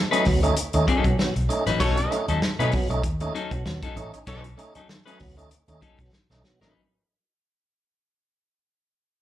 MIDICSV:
0, 0, Header, 1, 8, 480
1, 0, Start_track
1, 0, Tempo, 618557
1, 1398, Time_signature, 4, 2, 24, 8
1, 7152, End_track
2, 0, Start_track
2, 0, Title_t, "Horn section"
2, 0, Program_c, 0, 61
2, 1395, Note_on_c, 0, 66, 107
2, 1398, Note_on_c, 0, 69, 103
2, 1398, Note_on_c, 0, 73, 114
2, 1715, Note_off_c, 0, 66, 0
2, 1717, Note_off_c, 0, 69, 0
2, 1717, Note_off_c, 0, 73, 0
2, 3316, Note_on_c, 0, 66, 95
2, 3318, Note_on_c, 0, 73, 107
2, 3319, Note_on_c, 0, 69, 108
2, 3432, Note_off_c, 0, 66, 0
2, 3433, Note_off_c, 0, 69, 0
2, 3433, Note_off_c, 0, 73, 0
2, 7152, End_track
3, 0, Start_track
3, 0, Title_t, "Clean electric guitar"
3, 0, Program_c, 1, 27
3, 87, Note_on_c, 1, 71, 78
3, 93, Note_on_c, 1, 63, 73
3, 96, Note_on_c, 1, 61, 71
3, 102, Note_on_c, 1, 54, 67
3, 190, Note_off_c, 1, 54, 0
3, 193, Note_off_c, 1, 61, 0
3, 195, Note_off_c, 1, 63, 0
3, 200, Note_off_c, 1, 71, 0
3, 679, Note_on_c, 1, 54, 89
3, 685, Note_on_c, 1, 61, 104
3, 687, Note_on_c, 1, 63, 95
3, 692, Note_on_c, 1, 69, 96
3, 811, Note_off_c, 1, 69, 0
3, 816, Note_off_c, 1, 63, 0
3, 819, Note_off_c, 1, 61, 0
3, 844, Note_off_c, 1, 54, 0
3, 1293, Note_on_c, 1, 71, 81
3, 1299, Note_on_c, 1, 63, 74
3, 1304, Note_on_c, 1, 61, 71
3, 1307, Note_on_c, 1, 54, 74
3, 1384, Note_off_c, 1, 54, 0
3, 1387, Note_off_c, 1, 61, 0
3, 1393, Note_off_c, 1, 63, 0
3, 1393, Note_on_c, 1, 54, 86
3, 1396, Note_on_c, 1, 61, 79
3, 1401, Note_off_c, 1, 71, 0
3, 1403, Note_on_c, 1, 63, 91
3, 1404, Note_on_c, 1, 69, 99
3, 1525, Note_off_c, 1, 69, 0
3, 1530, Note_off_c, 1, 63, 0
3, 1533, Note_off_c, 1, 54, 0
3, 1535, Note_off_c, 1, 61, 0
3, 1775, Note_on_c, 1, 69, 69
3, 1777, Note_on_c, 1, 63, 61
3, 1781, Note_on_c, 1, 61, 57
3, 1787, Note_on_c, 1, 54, 55
3, 1859, Note_off_c, 1, 69, 0
3, 1860, Note_off_c, 1, 63, 0
3, 1862, Note_off_c, 1, 61, 0
3, 1865, Note_off_c, 1, 54, 0
3, 2012, Note_on_c, 1, 71, 91
3, 2021, Note_on_c, 1, 63, 73
3, 2025, Note_on_c, 1, 61, 82
3, 2029, Note_on_c, 1, 54, 67
3, 2111, Note_off_c, 1, 54, 0
3, 2117, Note_off_c, 1, 61, 0
3, 2117, Note_off_c, 1, 63, 0
3, 2122, Note_off_c, 1, 71, 0
3, 2596, Note_on_c, 1, 54, 81
3, 2599, Note_on_c, 1, 61, 99
3, 2602, Note_on_c, 1, 63, 93
3, 2608, Note_on_c, 1, 69, 92
3, 2723, Note_off_c, 1, 69, 0
3, 2726, Note_off_c, 1, 63, 0
3, 2730, Note_off_c, 1, 61, 0
3, 2735, Note_off_c, 1, 54, 0
3, 2973, Note_on_c, 1, 69, 69
3, 2980, Note_on_c, 1, 63, 78
3, 2985, Note_on_c, 1, 61, 67
3, 2990, Note_on_c, 1, 54, 61
3, 3068, Note_off_c, 1, 54, 0
3, 3071, Note_off_c, 1, 63, 0
3, 3072, Note_off_c, 1, 61, 0
3, 3076, Note_off_c, 1, 69, 0
3, 3313, Note_on_c, 1, 54, 72
3, 3315, Note_on_c, 1, 61, 67
3, 3320, Note_on_c, 1, 63, 85
3, 3326, Note_on_c, 1, 69, 85
3, 3440, Note_off_c, 1, 69, 0
3, 3445, Note_off_c, 1, 63, 0
3, 3450, Note_off_c, 1, 61, 0
3, 3453, Note_off_c, 1, 54, 0
3, 3688, Note_on_c, 1, 69, 58
3, 3695, Note_on_c, 1, 63, 60
3, 3696, Note_on_c, 1, 61, 53
3, 3703, Note_on_c, 1, 54, 50
3, 3776, Note_off_c, 1, 69, 0
3, 3779, Note_off_c, 1, 63, 0
3, 3780, Note_off_c, 1, 61, 0
3, 3783, Note_off_c, 1, 54, 0
3, 3923, Note_on_c, 1, 71, 73
3, 3927, Note_on_c, 1, 63, 77
3, 3934, Note_on_c, 1, 61, 75
3, 3935, Note_on_c, 1, 54, 67
3, 4022, Note_off_c, 1, 54, 0
3, 4029, Note_off_c, 1, 61, 0
3, 4031, Note_off_c, 1, 63, 0
3, 4038, Note_off_c, 1, 71, 0
3, 4511, Note_on_c, 1, 54, 80
3, 4518, Note_on_c, 1, 61, 86
3, 4521, Note_on_c, 1, 63, 88
3, 4525, Note_on_c, 1, 69, 92
3, 4643, Note_off_c, 1, 69, 0
3, 4648, Note_off_c, 1, 63, 0
3, 4653, Note_off_c, 1, 54, 0
3, 4653, Note_off_c, 1, 61, 0
3, 5132, Note_on_c, 1, 71, 73
3, 5137, Note_on_c, 1, 63, 69
3, 5143, Note_on_c, 1, 61, 57
3, 5149, Note_on_c, 1, 54, 50
3, 5278, Note_off_c, 1, 71, 0
3, 5281, Note_off_c, 1, 63, 0
3, 5284, Note_off_c, 1, 61, 0
3, 5287, Note_off_c, 1, 54, 0
3, 7152, End_track
4, 0, Start_track
4, 0, Title_t, "Tonewheel organ"
4, 0, Program_c, 2, 16
4, 91, Note_on_c, 2, 57, 82
4, 93, Note_on_c, 2, 61, 78
4, 95, Note_on_c, 2, 63, 97
4, 187, Note_off_c, 2, 57, 0
4, 188, Note_off_c, 2, 61, 0
4, 189, Note_off_c, 2, 63, 0
4, 200, Note_on_c, 2, 54, 64
4, 201, Note_on_c, 2, 47, 62
4, 320, Note_off_c, 2, 47, 0
4, 320, Note_off_c, 2, 54, 0
4, 333, Note_on_c, 2, 57, 88
4, 334, Note_on_c, 2, 61, 69
4, 338, Note_on_c, 2, 63, 90
4, 427, Note_off_c, 2, 57, 0
4, 428, Note_off_c, 2, 61, 0
4, 430, Note_off_c, 2, 63, 0
4, 573, Note_on_c, 2, 57, 73
4, 575, Note_on_c, 2, 61, 65
4, 577, Note_on_c, 2, 63, 81
4, 667, Note_off_c, 2, 57, 0
4, 668, Note_off_c, 2, 61, 0
4, 670, Note_off_c, 2, 63, 0
4, 815, Note_on_c, 2, 54, 62
4, 816, Note_on_c, 2, 47, 64
4, 908, Note_off_c, 2, 54, 0
4, 909, Note_off_c, 2, 47, 0
4, 921, Note_on_c, 2, 47, 56
4, 921, Note_on_c, 2, 54, 60
4, 1040, Note_off_c, 2, 47, 0
4, 1040, Note_off_c, 2, 54, 0
4, 1156, Note_on_c, 2, 57, 85
4, 1157, Note_on_c, 2, 61, 75
4, 1159, Note_on_c, 2, 63, 92
4, 1277, Note_off_c, 2, 57, 0
4, 1278, Note_off_c, 2, 61, 0
4, 1279, Note_off_c, 2, 63, 0
4, 1293, Note_on_c, 2, 63, 43
4, 1294, Note_on_c, 2, 61, 39
4, 1335, Note_off_c, 2, 63, 0
4, 1336, Note_off_c, 2, 61, 0
4, 1397, Note_on_c, 2, 54, 60
4, 1398, Note_on_c, 2, 47, 62
4, 1518, Note_off_c, 2, 47, 0
4, 1518, Note_off_c, 2, 54, 0
4, 1634, Note_on_c, 2, 57, 93
4, 1637, Note_on_c, 2, 61, 77
4, 1640, Note_on_c, 2, 63, 81
4, 1756, Note_off_c, 2, 57, 0
4, 1758, Note_off_c, 2, 61, 0
4, 1759, Note_off_c, 2, 63, 0
4, 1774, Note_on_c, 2, 61, 38
4, 1774, Note_on_c, 2, 63, 43
4, 1816, Note_off_c, 2, 61, 0
4, 1816, Note_off_c, 2, 63, 0
4, 2010, Note_on_c, 2, 57, 84
4, 2013, Note_on_c, 2, 61, 74
4, 2015, Note_on_c, 2, 63, 90
4, 2106, Note_off_c, 2, 57, 0
4, 2107, Note_off_c, 2, 61, 0
4, 2108, Note_off_c, 2, 63, 0
4, 2119, Note_on_c, 2, 47, 70
4, 2120, Note_on_c, 2, 54, 64
4, 2239, Note_off_c, 2, 47, 0
4, 2239, Note_off_c, 2, 54, 0
4, 2247, Note_on_c, 2, 57, 82
4, 2250, Note_on_c, 2, 61, 70
4, 2252, Note_on_c, 2, 63, 85
4, 2344, Note_off_c, 2, 57, 0
4, 2346, Note_off_c, 2, 61, 0
4, 2347, Note_off_c, 2, 63, 0
4, 2490, Note_on_c, 2, 57, 74
4, 2492, Note_on_c, 2, 61, 65
4, 2494, Note_on_c, 2, 63, 85
4, 2586, Note_off_c, 2, 57, 0
4, 2587, Note_off_c, 2, 61, 0
4, 2588, Note_off_c, 2, 63, 0
4, 2731, Note_on_c, 2, 54, 61
4, 2732, Note_on_c, 2, 47, 62
4, 2826, Note_off_c, 2, 54, 0
4, 2827, Note_off_c, 2, 47, 0
4, 2837, Note_on_c, 2, 47, 54
4, 2837, Note_on_c, 2, 54, 52
4, 2958, Note_off_c, 2, 47, 0
4, 2958, Note_off_c, 2, 54, 0
4, 3074, Note_on_c, 2, 57, 77
4, 3075, Note_on_c, 2, 61, 68
4, 3078, Note_on_c, 2, 63, 83
4, 3197, Note_off_c, 2, 57, 0
4, 3197, Note_off_c, 2, 61, 0
4, 3198, Note_off_c, 2, 63, 0
4, 3211, Note_on_c, 2, 61, 42
4, 3211, Note_on_c, 2, 63, 48
4, 3254, Note_off_c, 2, 61, 0
4, 3255, Note_off_c, 2, 63, 0
4, 3315, Note_on_c, 2, 47, 56
4, 3317, Note_on_c, 2, 54, 50
4, 3437, Note_off_c, 2, 47, 0
4, 3438, Note_off_c, 2, 54, 0
4, 3550, Note_on_c, 2, 57, 86
4, 3552, Note_on_c, 2, 61, 80
4, 3554, Note_on_c, 2, 63, 90
4, 3674, Note_off_c, 2, 57, 0
4, 3675, Note_off_c, 2, 61, 0
4, 3676, Note_off_c, 2, 63, 0
4, 3688, Note_on_c, 2, 63, 38
4, 3689, Note_on_c, 2, 61, 38
4, 3733, Note_off_c, 2, 61, 0
4, 3733, Note_off_c, 2, 63, 0
4, 3926, Note_on_c, 2, 57, 80
4, 3929, Note_on_c, 2, 61, 80
4, 3932, Note_on_c, 2, 63, 84
4, 4024, Note_off_c, 2, 57, 0
4, 4025, Note_off_c, 2, 61, 0
4, 4027, Note_off_c, 2, 63, 0
4, 4036, Note_on_c, 2, 47, 61
4, 4036, Note_on_c, 2, 54, 62
4, 4157, Note_off_c, 2, 47, 0
4, 4158, Note_off_c, 2, 54, 0
4, 4167, Note_on_c, 2, 57, 82
4, 4170, Note_on_c, 2, 61, 69
4, 4173, Note_on_c, 2, 63, 86
4, 4265, Note_off_c, 2, 57, 0
4, 4266, Note_off_c, 2, 61, 0
4, 4268, Note_off_c, 2, 63, 0
4, 4408, Note_on_c, 2, 57, 73
4, 4411, Note_on_c, 2, 61, 67
4, 4414, Note_on_c, 2, 63, 73
4, 4505, Note_off_c, 2, 57, 0
4, 4507, Note_off_c, 2, 61, 0
4, 4508, Note_off_c, 2, 63, 0
4, 4652, Note_on_c, 2, 47, 63
4, 4652, Note_on_c, 2, 54, 60
4, 4747, Note_off_c, 2, 47, 0
4, 4747, Note_off_c, 2, 54, 0
4, 4891, Note_on_c, 2, 57, 71
4, 4893, Note_on_c, 2, 61, 62
4, 4895, Note_on_c, 2, 63, 83
4, 4987, Note_off_c, 2, 57, 0
4, 4988, Note_off_c, 2, 61, 0
4, 4989, Note_off_c, 2, 63, 0
4, 4998, Note_on_c, 2, 47, 61
4, 4998, Note_on_c, 2, 54, 59
4, 5119, Note_off_c, 2, 47, 0
4, 5119, Note_off_c, 2, 54, 0
4, 5131, Note_on_c, 2, 57, 77
4, 5133, Note_on_c, 2, 61, 72
4, 5136, Note_on_c, 2, 63, 79
4, 5227, Note_off_c, 2, 57, 0
4, 5228, Note_off_c, 2, 61, 0
4, 5229, Note_off_c, 2, 63, 0
4, 7152, End_track
5, 0, Start_track
5, 0, Title_t, "Fingered electric bass"
5, 0, Program_c, 3, 33
5, 206, Note_on_c, 3, 38, 91
5, 401, Note_off_c, 3, 38, 0
5, 573, Note_on_c, 3, 39, 86
5, 660, Note_off_c, 3, 39, 0
5, 810, Note_on_c, 3, 35, 88
5, 898, Note_off_c, 3, 35, 0
5, 1054, Note_on_c, 3, 35, 83
5, 1140, Note_off_c, 3, 35, 0
5, 1290, Note_on_c, 3, 33, 97
5, 1399, Note_off_c, 3, 33, 0
5, 1399, Note_on_c, 3, 35, 107
5, 1596, Note_off_c, 3, 35, 0
5, 1772, Note_on_c, 3, 39, 94
5, 1859, Note_off_c, 3, 39, 0
5, 2010, Note_on_c, 3, 47, 88
5, 2098, Note_off_c, 3, 47, 0
5, 2245, Note_on_c, 3, 35, 94
5, 2335, Note_off_c, 3, 35, 0
5, 2354, Note_on_c, 3, 39, 82
5, 2553, Note_off_c, 3, 39, 0
5, 2725, Note_on_c, 3, 35, 84
5, 2816, Note_off_c, 3, 35, 0
5, 2831, Note_on_c, 3, 39, 84
5, 2945, Note_off_c, 3, 39, 0
5, 3073, Note_on_c, 3, 33, 87
5, 3186, Note_off_c, 3, 33, 0
5, 3315, Note_on_c, 3, 35, 112
5, 3514, Note_off_c, 3, 35, 0
5, 4041, Note_on_c, 3, 38, 87
5, 4238, Note_off_c, 3, 38, 0
5, 4407, Note_on_c, 3, 39, 76
5, 4497, Note_off_c, 3, 39, 0
5, 4647, Note_on_c, 3, 35, 77
5, 4737, Note_off_c, 3, 35, 0
5, 4888, Note_on_c, 3, 35, 80
5, 4977, Note_off_c, 3, 35, 0
5, 5127, Note_on_c, 3, 33, 89
5, 5217, Note_off_c, 3, 33, 0
5, 7152, End_track
6, 0, Start_track
6, 0, Title_t, "Muted clean electric guitar strokes"
6, 199, Note_on_c, 9, 29, 42
6, 277, Note_off_c, 9, 29, 0
6, 335, Note_on_c, 9, 29, 46
6, 413, Note_off_c, 9, 29, 0
6, 575, Note_on_c, 9, 29, 43
6, 652, Note_off_c, 9, 29, 0
6, 820, Note_on_c, 9, 29, 38
6, 898, Note_off_c, 9, 29, 0
6, 921, Note_on_c, 9, 29, 46
6, 998, Note_off_c, 9, 29, 0
6, 1054, Note_on_c, 9, 29, 38
6, 1131, Note_off_c, 9, 29, 0
6, 1534, Note_on_c, 9, 29, 36
6, 1612, Note_off_c, 9, 29, 0
6, 1637, Note_on_c, 9, 29, 37
6, 1714, Note_off_c, 9, 29, 0
6, 1882, Note_on_c, 9, 29, 43
6, 1959, Note_off_c, 9, 29, 0
6, 2120, Note_on_c, 9, 29, 45
6, 2198, Note_off_c, 9, 29, 0
6, 2254, Note_on_c, 9, 29, 44
6, 2331, Note_off_c, 9, 29, 0
6, 2493, Note_on_c, 9, 29, 52
6, 2571, Note_off_c, 9, 29, 0
6, 2732, Note_on_c, 9, 29, 43
6, 2810, Note_off_c, 9, 29, 0
6, 2839, Note_on_c, 9, 29, 41
6, 2917, Note_off_c, 9, 29, 0
6, 3077, Note_on_c, 9, 29, 41
6, 3155, Note_off_c, 9, 29, 0
6, 3210, Note_on_c, 9, 29, 38
6, 3288, Note_off_c, 9, 29, 0
6, 3449, Note_on_c, 9, 29, 42
6, 3527, Note_off_c, 9, 29, 0
6, 3555, Note_on_c, 9, 29, 39
6, 3632, Note_off_c, 9, 29, 0
6, 3795, Note_on_c, 9, 29, 42
6, 3873, Note_off_c, 9, 29, 0
6, 4032, Note_on_c, 9, 29, 41
6, 4109, Note_off_c, 9, 29, 0
6, 4166, Note_on_c, 9, 29, 37
6, 4243, Note_off_c, 9, 29, 0
6, 4413, Note_on_c, 9, 29, 37
6, 4491, Note_off_c, 9, 29, 0
6, 4652, Note_on_c, 9, 29, 41
6, 4730, Note_off_c, 9, 29, 0
6, 4759, Note_on_c, 9, 29, 43
6, 4837, Note_off_c, 9, 29, 0
6, 4893, Note_on_c, 9, 29, 41
6, 4971, Note_off_c, 9, 29, 0
6, 7152, End_track
7, 0, Start_track
7, 0, Title_t, "Muted fingered electric bass strokes"
7, 438, Note_on_c, 9, 29, 42
7, 515, Note_off_c, 9, 29, 0
7, 1880, Note_on_c, 9, 29, 48
7, 1957, Note_off_c, 9, 29, 0
7, 3689, Note_on_c, 9, 29, 46
7, 3767, Note_off_c, 9, 29, 0
7, 4276, Note_on_c, 9, 29, 39
7, 4354, Note_off_c, 9, 29, 0
7, 7152, End_track
8, 0, Start_track
8, 0, Title_t, "Drums"
8, 101, Note_on_c, 9, 42, 55
8, 178, Note_off_c, 9, 42, 0
8, 194, Note_on_c, 9, 46, 74
8, 198, Note_on_c, 9, 38, 36
8, 207, Note_on_c, 9, 36, 87
8, 271, Note_off_c, 9, 46, 0
8, 276, Note_off_c, 9, 38, 0
8, 284, Note_off_c, 9, 36, 0
8, 340, Note_on_c, 9, 42, 49
8, 417, Note_off_c, 9, 42, 0
8, 438, Note_on_c, 9, 42, 94
8, 515, Note_off_c, 9, 42, 0
8, 567, Note_on_c, 9, 42, 47
8, 644, Note_off_c, 9, 42, 0
8, 682, Note_on_c, 9, 36, 89
8, 682, Note_on_c, 9, 42, 74
8, 760, Note_off_c, 9, 36, 0
8, 760, Note_off_c, 9, 42, 0
8, 810, Note_on_c, 9, 36, 98
8, 815, Note_on_c, 9, 42, 56
8, 888, Note_off_c, 9, 36, 0
8, 893, Note_off_c, 9, 42, 0
8, 925, Note_on_c, 9, 38, 122
8, 1003, Note_off_c, 9, 38, 0
8, 1055, Note_on_c, 9, 42, 54
8, 1132, Note_off_c, 9, 42, 0
8, 1164, Note_on_c, 9, 42, 62
8, 1242, Note_off_c, 9, 42, 0
8, 1287, Note_on_c, 9, 38, 35
8, 1293, Note_on_c, 9, 42, 55
8, 1365, Note_off_c, 9, 38, 0
8, 1370, Note_off_c, 9, 42, 0
8, 1396, Note_on_c, 9, 42, 98
8, 1399, Note_on_c, 9, 36, 97
8, 1474, Note_off_c, 9, 42, 0
8, 1476, Note_off_c, 9, 36, 0
8, 1530, Note_on_c, 9, 42, 57
8, 1608, Note_off_c, 9, 42, 0
8, 1644, Note_on_c, 9, 42, 78
8, 1721, Note_off_c, 9, 42, 0
8, 1771, Note_on_c, 9, 42, 46
8, 1848, Note_off_c, 9, 42, 0
8, 1880, Note_on_c, 9, 38, 108
8, 1957, Note_off_c, 9, 38, 0
8, 2018, Note_on_c, 9, 42, 58
8, 2095, Note_off_c, 9, 42, 0
8, 2108, Note_on_c, 9, 46, 71
8, 2122, Note_on_c, 9, 36, 81
8, 2185, Note_off_c, 9, 46, 0
8, 2200, Note_off_c, 9, 36, 0
8, 2256, Note_on_c, 9, 42, 50
8, 2334, Note_off_c, 9, 42, 0
8, 2354, Note_on_c, 9, 42, 103
8, 2355, Note_on_c, 9, 36, 85
8, 2432, Note_off_c, 9, 42, 0
8, 2433, Note_off_c, 9, 36, 0
8, 2484, Note_on_c, 9, 42, 47
8, 2562, Note_off_c, 9, 42, 0
8, 2602, Note_on_c, 9, 42, 81
8, 2680, Note_off_c, 9, 42, 0
8, 2726, Note_on_c, 9, 36, 94
8, 2731, Note_on_c, 9, 42, 59
8, 2804, Note_off_c, 9, 36, 0
8, 2808, Note_off_c, 9, 42, 0
8, 2838, Note_on_c, 9, 38, 127
8, 2915, Note_off_c, 9, 38, 0
8, 2968, Note_on_c, 9, 42, 57
8, 2969, Note_on_c, 9, 36, 97
8, 3045, Note_off_c, 9, 42, 0
8, 3046, Note_off_c, 9, 36, 0
8, 3077, Note_on_c, 9, 42, 61
8, 3154, Note_off_c, 9, 42, 0
8, 3209, Note_on_c, 9, 42, 52
8, 3287, Note_off_c, 9, 42, 0
8, 3312, Note_on_c, 9, 42, 103
8, 3315, Note_on_c, 9, 36, 107
8, 3390, Note_off_c, 9, 42, 0
8, 3393, Note_off_c, 9, 36, 0
8, 3446, Note_on_c, 9, 42, 60
8, 3523, Note_off_c, 9, 42, 0
8, 3558, Note_on_c, 9, 42, 76
8, 3636, Note_off_c, 9, 42, 0
8, 3685, Note_on_c, 9, 42, 47
8, 3763, Note_off_c, 9, 42, 0
8, 3798, Note_on_c, 9, 38, 104
8, 3875, Note_off_c, 9, 38, 0
8, 3937, Note_on_c, 9, 42, 57
8, 4014, Note_off_c, 9, 42, 0
8, 4031, Note_on_c, 9, 46, 77
8, 4042, Note_on_c, 9, 36, 76
8, 4109, Note_off_c, 9, 46, 0
8, 4120, Note_off_c, 9, 36, 0
8, 4180, Note_on_c, 9, 42, 49
8, 4257, Note_off_c, 9, 42, 0
8, 4274, Note_on_c, 9, 42, 101
8, 4352, Note_off_c, 9, 42, 0
8, 4408, Note_on_c, 9, 42, 49
8, 4486, Note_off_c, 9, 42, 0
8, 4518, Note_on_c, 9, 36, 79
8, 4519, Note_on_c, 9, 42, 79
8, 4596, Note_off_c, 9, 36, 0
8, 4596, Note_off_c, 9, 42, 0
8, 4646, Note_on_c, 9, 36, 95
8, 4651, Note_on_c, 9, 42, 52
8, 4724, Note_off_c, 9, 36, 0
8, 4729, Note_off_c, 9, 42, 0
8, 4758, Note_on_c, 9, 38, 58
8, 4835, Note_off_c, 9, 38, 0
8, 4894, Note_on_c, 9, 38, 64
8, 4971, Note_off_c, 9, 38, 0
8, 4999, Note_on_c, 9, 38, 79
8, 5076, Note_off_c, 9, 38, 0
8, 5134, Note_on_c, 9, 38, 80
8, 5211, Note_off_c, 9, 38, 0
8, 7152, End_track
0, 0, End_of_file